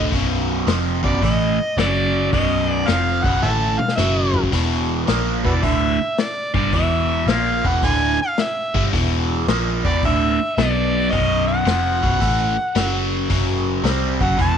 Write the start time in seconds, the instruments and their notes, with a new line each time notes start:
Already playing: picked electric bass D1, overdriven electric guitar D2 A2 D3
0.12 picked electric bass B0, overdriven electric guitar B1 F#2 B2, kick, open hi-hat
0.67 picked electric bass F1, overdriven electric guitar F2 C3 F3, snare, open hi-hat
1.03 picked electric bass B0, overdriven electric guitar B1 F#2 B2, harmonica D5, kick
1.22 picked electric bass A1, overdriven electric guitar A2 E3 A3, harmonica D#5, kick, open hi-hat
1.77 picked electric bass F#1, overdriven electric guitar F#2 C#3 F#3, harmonica D5, snare, open hi-hat
2.33 picked electric bass B0, overdriven electric guitar B1 F#2 B2, harmonica D#5, kick, open hi-hat
2.70 harmonica D5
2.88 picked electric bass F1, overdriven electric guitar F2 C3 F3, harmonica F5, snare, open hi-hat
3.23 picked electric bass B0, overdriven electric guitar B1 F#2 B2, harmonica F#5, kick
3.42 picked electric bass A1, overdriven electric guitar A2 E3 A3, harmonica E5 F#5 A5, high tom
3.78 harmonica F5, mid tom
3.88 snare
3.96 picked electric bass F#1, overdriven electric guitar F#2 C#3 F#3, harmonica E5, snare
4.34 floor tom
4.44 kick
4.52 picked electric bass E1, overdriven electric guitar E2 B2 E3, kick, open hi-hat, splash
5.07 picked electric bass A#1, overdriven electric guitar A#2 F3 A#3, snare, open hi-hat
5.44 picked electric bass E1, overdriven electric guitar E2 B2 E3, harmonica F#4 B4 D5, kick
5.62 picked electric bass D1, overdriven electric guitar D2 A2 D3, harmonica E5, kick, open hi-hat
6.18 harmonica D5, snare, open hi-hat
6.54 picked electric bass G1, overdriven electric guitar G2 D3 G3, harmonica D5, kick
6.73 picked electric bass E1, overdriven electric guitar E2 B2 E3, harmonica E5, kick, open hi-hat
7.26 picked electric bass A#1, overdriven electric guitar A#2 F3 A#3, harmonica F5, snare, open hi-hat
7.65 picked electric bass E1, overdriven electric guitar E2 B2 E3, harmonica F#5, kick
7.83 picked electric bass D1, overdriven electric guitar D2 A2 D3, harmonica G#5, kick, open hi-hat
8.22 harmonica F5
8.37 harmonica E5, snare, open hi-hat
8.74 picked electric bass G1, overdriven electric guitar G2 D3 G3, kick
8.93 picked electric bass E1, overdriven electric guitar E2 B2 E3, kick, open hi-hat
9.47 picked electric bass A#1, overdriven electric guitar A#2 F3 A#3, snare, open hi-hat
9.85 picked electric bass E1, overdriven electric guitar E2 B2 E3, harmonica D5, kick
10.03 picked electric bass D1, overdriven electric guitar D2 A2 D3, harmonica E5, kick, open hi-hat
10.56 picked electric bass B1, overdriven electric guitar B2 F#3 B3, harmonica D5, snare, open hi-hat
11.11 picked electric bass B0, overdriven electric guitar B1 F#2 B2, harmonica D#5, kick, open hi-hat
11.47 harmonica F#5
11.66 picked electric bass F1, overdriven electric guitar F2 C3 F3, snare, open hi-hat
12.03 picked electric bass B0, overdriven electric guitar B1 F#2 B2, kick
12.20 picked electric bass A1, overdriven electric guitar A2 E3 A3, kick, open hi-hat
12.75 picked electric bass F#1, overdriven electric guitar F#2 C#3 F#3, snare, open hi-hat
13.30 picked electric bass F#1, overdriven electric guitar F#2 C#3 F#3, kick, open hi-hat
13.84 picked electric bass C2, overdriven electric guitar C3 G3 C4, snare, open hi-hat
14.21 picked electric bass F#1, overdriven electric guitar F#2 C#3 F#3, harmonica F#5, kick
14.38 picked electric bass E1, overdriven electric guitar E2 B2 E3, harmonica A5, kick, open hi-hat